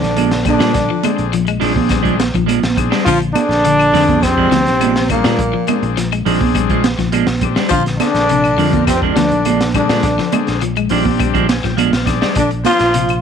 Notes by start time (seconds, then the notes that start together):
Already playing: D3 F3 D4
0.02 A#1, snare, closed hi-hat, low conga
0.16 F3 G#3 D4, closed hi-hat, high conga, claves
0.31 muted clean electric guitar stroke, snare, closed hi-hat
0.45 D3 G3 C4 D4 G#4, muted clean electric guitar stroke, kick, closed hi-hat, high conga, low conga, claves
0.49 D4
0.59 A#2 G3 G#3 D4, snare, closed hi-hat
0.74 A#1, kick, snare, closed hi-hat
0.89 F3, muted clean electric guitar stroke
1.04 G#3 C4 D4 G#4, muted fingered electric bass stroke, closed hi-hat, high conga, claves
1.17 A#1, muted clean electric guitar stroke, closed hi-hat
1.33 F3, closed hi-hat, high conga
1.45 G#3, muted clean electric guitar stroke, closed hi-hat, claves
1.60 A#1 F3 G#3 C4 D4 G#4, open hi-hat, low conga
1.75 muted clean electric guitar stroke, kick, high conga
1.89 G3, muted clean electric guitar stroke, kick, snare, closed hi-hat, high conga, claves
2.03 F3 G#3 D4, kick, closed hi-hat
2.17 muted clean electric guitar stroke, snare, closed hi-hat, high conga
2.34 A#1 F3, kick, closed hi-hat, low conga
2.46 F3 G#3 D4, closed hi-hat, high conga, claves
2.61 A#1, muted clean electric guitar stroke, snare, closed hi-hat, high conga
2.76 C4 D4 G#4, muted clean electric guitar stroke, kick, closed hi-hat, low conga, claves
2.91 G3 G#3 D4, snare
3.05 A#1 D3 F3 F4, kick, closed hi-hat, high conga
3.21 muted clean electric guitar stroke, closed hi-hat
3.34 D3 C4 D4 G#4, closed hi-hat, high conga, claves
3.49 A#1, muted clean electric guitar stroke, snare, closed hi-hat
3.65 D3, closed hi-hat, high conga
3.79 muted clean electric guitar stroke, closed hi-hat, claves
3.93 F2 D3 F3 G#3 C4 D4 G#4, snare, open hi-hat, low conga
4.08 muted clean electric guitar stroke, kick, closed hi-hat, high conga
4.22 C3 C4, muted clean electric guitar stroke, kick, snare, closed hi-hat, high conga, claves
4.37 F3 G#3 D4, kick
4.51 D2 F3, snare, closed hi-hat, high conga
4.67 A#1, snare, closed hi-hat, low conga
4.80 F3 G#3 D4, closed hi-hat, high conga, claves
4.95 muted clean electric guitar stroke, snare, closed hi-hat
5.09 A#2 G3 A#3 C4 D4 G#4, muted clean electric guitar stroke, kick, closed hi-hat, low conga, claves
5.14 A#3
5.24 A#2 G3 G#3 D4, snare, closed hi-hat
5.39 A#1, kick, closed hi-hat, high conga
5.53 F3, muted clean electric guitar stroke
5.67 G#3 C4 D4 G#4, muted fingered electric bass stroke, closed hi-hat, high conga, claves
5.83 A#1, muted clean electric guitar stroke, closed hi-hat
5.97 F3, snare, closed hi-hat, high conga
6.12 G#3, muted clean electric guitar stroke, closed hi-hat, claves
6.25 A#1 F3 G#3 C4 D4 G#4, open hi-hat, low conga
6.41 kick, high conga
6.55 G3, muted clean electric guitar stroke, kick, closed hi-hat, high conga, claves
6.70 F3 G#3, muted clean electric guitar stroke, kick, closed hi-hat
6.84 muted clean electric guitar stroke, snare, closed hi-hat, high conga
6.99 A#1 F3, kick, snare, closed hi-hat, low conga
7.12 F3 G#3 D4, closed hi-hat, high conga, claves
7.27 A#1, muted clean electric guitar stroke, snare, closed hi-hat
7.41 C4 D4 G4, muted clean electric guitar stroke, kick, closed hi-hat, low conga, claves
7.56 G3 G#3 D4, snare
7.69 A#1 D3 F3 F4, kick, closed hi-hat, high conga
7.74 F4
7.85 muted clean electric guitar stroke, snare, closed hi-hat
7.97 D3 C4 D4 G#4, snare, closed hi-hat, high conga, claves
8.14 A#1, muted clean electric guitar stroke, snare, closed hi-hat
8.29 C3, closed hi-hat, high conga
8.44 muted clean electric guitar stroke, closed hi-hat, claves
8.57 F2 D3 F3 G#3 C4 D4 A#4, open hi-hat, low conga
8.73 muted clean electric guitar stroke, kick, closed hi-hat, high conga
8.87 C3 C4, muted clean electric guitar stroke, kick, snare, closed hi-hat, high conga, claves
9.02 F3 G#3 D4, kick
9.13 D2 D3 D4, snare, closed hi-hat, high conga
9.17 F3 D4, muted clean electric guitar stroke
9.31 A#1, closed hi-hat, low conga
9.45 F3 G#3, closed hi-hat, high conga, claves
9.60 muted clean electric guitar stroke, snare, closed hi-hat
9.74 D3 G3 C4 D4 G#4, muted clean electric guitar stroke, kick, closed hi-hat, low conga, claves
9.89 A#2 G3 G#3 D4, snare, closed hi-hat
10.03 A#1, kick, snare, closed hi-hat, high conga
10.18 F3, muted clean electric guitar stroke, snare
10.32 G#3 C4 D4 G#4, muted fingered electric bass stroke, closed hi-hat, high conga, claves
10.47 A#1, muted clean electric guitar stroke, snare, closed hi-hat
10.61 F3, closed hi-hat, high conga
10.76 G#3, muted clean electric guitar stroke, closed hi-hat, claves
10.89 A#1 F3 G#3 C4 D4 G4, open hi-hat, low conga
11.05 muted clean electric guitar stroke, kick, high conga
11.19 G3, muted clean electric guitar stroke, kick, closed hi-hat, high conga, claves
11.34 F3 G#3 D4, kick, closed hi-hat
11.49 G#5, snare, closed hi-hat, high conga
11.64 A#1 F3 G5, kick, snare, closed hi-hat, low conga
11.77 F3 G#3 D4 F5, closed hi-hat, high conga, claves
11.93 A#1, muted clean electric guitar stroke, snare, closed hi-hat
12.05 C4 D4 G#4 D5, muted clean electric guitar stroke, kick, snare, closed hi-hat, low conga, claves
12.22 G3 G#3 D4, snare
12.35 A#1 A#2 D3 D4, kick, closed hi-hat, high conga
12.51 muted clean electric guitar stroke, closed hi-hat
12.63 F3 C4 D4 F4 A#4, snare, closed hi-hat, high conga, claves
12.79 A#1, muted clean electric guitar stroke, snare, closed hi-hat
12.94 C3, closed hi-hat, high conga
13.09 muted clean electric guitar stroke, closed hi-hat, claves